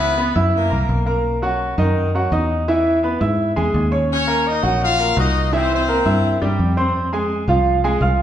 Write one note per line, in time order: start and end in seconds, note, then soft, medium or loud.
0.00 0.30 C#2 loud
0.00 0.12 E3 medium
0.00 0.36 B3 medium
0.00 0.11 E4 medium
0.00 0.37 B4 loud
0.00 0.12 E5 medium
0.17 0.32 B3 medium
0.17 0.33 B4 medium
0.17 0.33 B5 medium
0.36 0.69 F#2 loud
0.36 0.65 E4 medium
0.36 0.65 E5 medium
0.36 0.65 E6 medium
0.55 1.04 A#3 medium
0.55 1.05 A#4 medium
0.70 0.88 C2 medium
0.70 1.00 A#3 medium
0.70 1.00 A#4 medium
0.70 1.00 A#5 medium
0.89 1.73 B1 loud
1.06 1.36 A#3 medium
1.06 1.36 A#4 medium
1.06 1.36 A#5 medium
1.42 1.72 F#3 medium
1.42 1.72 F#4 medium
1.42 1.72 F#5 medium
1.78 2.28 F#2 loud
1.78 2.08 D#3 medium
1.78 2.07 D#4 medium
1.78 2.08 D#5 medium
2.15 2.29 F#3 medium
2.15 2.29 F#4 medium
2.15 2.30 F#5 medium
2.32 3.15 E2 loud
2.32 2.61 D#4 medium
2.32 2.61 D#5 medium
2.32 2.62 D#6 medium
2.68 2.97 E3 medium
2.68 2.97 E4 medium
2.68 2.97 E5 medium
3.03 3.18 B3 medium
3.03 3.18 B4 medium
3.03 3.18 B5 medium
3.20 3.54 G#2 loud
3.20 3.50 E4 medium
3.20 3.50 E5 medium
3.20 3.50 E6 medium
3.56 3.74 E2 medium
3.56 3.86 G#3 medium
3.56 3.86 G#4 medium
3.56 3.86 G#5 medium
3.74 4.58 D#2 loud
3.91 4.21 C#4 medium
3.91 4.21 C#5 medium
3.91 4.21 C#6 medium
4.13 4.45 C#4 medium
4.13 4.45 C#5 loud
4.27 4.57 A#3 medium
4.27 4.57 A#4 medium
4.27 4.57 A#5 medium
4.48 4.83 D#4 medium
4.48 4.82 D#5 medium
4.63 5.13 A#1 loud
4.63 4.92 F#3 medium
4.63 4.93 F#4 medium
4.63 4.93 F#5 medium
4.82 5.15 F4 medium
4.82 5.15 F5 loud
4.99 5.14 A#3 medium
4.99 5.14 A#4 medium
4.99 5.14 A#5 medium
5.17 6.00 C2 loud
5.17 5.47 D#4 medium
5.17 5.46 F#4 medium
5.17 5.47 D#5 medium
5.17 5.46 F#5 medium
5.17 5.46 F#6 medium
5.50 5.82 E3 medium
5.50 5.71 C4 medium
5.50 5.54 D4 medium
5.50 5.82 E4 medium
5.50 5.71 C5 medium
5.50 5.54 D5 medium
5.50 5.82 E5 medium
5.73 6.39 C4 medium
5.73 6.39 C5 medium
5.89 6.03 A#3 medium
5.89 6.03 A#4 medium
5.89 6.03 A#5 medium
6.06 6.39 G2 loud
6.06 6.35 E4 medium
6.06 6.35 E5 medium
6.06 6.35 E6 medium
6.42 6.58 G2 medium
6.42 6.71 G3 medium
6.42 6.71 G4 medium
6.42 6.71 G5 medium
6.59 7.42 F2 loud
6.77 7.06 C4 medium
6.77 7.06 C5 medium
6.77 7.06 C6 medium
7.13 7.42 G#3 medium
7.13 7.42 G#4 medium
7.13 7.42 G#5 medium
7.48 7.97 C2 loud
7.48 7.77 F3 medium
7.48 7.78 F4 medium
7.48 7.78 F5 medium
7.84 7.99 G#3 medium
7.84 7.98 G#4 medium
7.84 7.99 G#5 medium
8.01 8.22 C2 loud
8.01 8.22 F4 medium
8.01 8.22 F5 medium
8.01 8.22 F6 medium